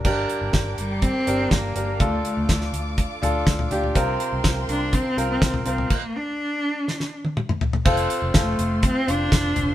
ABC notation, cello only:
X:1
M:4/4
L:1/16
Q:1/4=123
K:F
V:1 name="Cello"
z6 G,2 C4 B,4 | A,2 A,4 z8 z2 | z6 D2 C3 C3 C2 | B,2 D8 z6 |
z4 A,4 C2 D6 |]